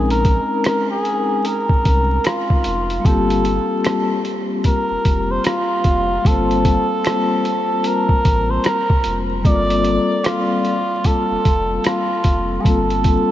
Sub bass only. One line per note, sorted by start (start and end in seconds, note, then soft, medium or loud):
0.00 0.39 A#1 loud
1.70 1.76 C2 soft
1.86 2.19 C2 medium
2.67 2.99 F1 medium
3.06 3.59 G1 loud
4.91 4.97 F1 soft
5.06 5.39 F1 medium
5.85 6.18 F1 medium
6.26 6.79 G1 loud
8.10 8.16 A1 soft
8.26 8.59 A1 medium
9.06 9.47 F1 medium
9.45 9.99 G1 loud
11.31 11.37 F1 soft
11.46 11.79 F1 medium
12.25 12.58 F1 medium
12.66 13.19 G1 loud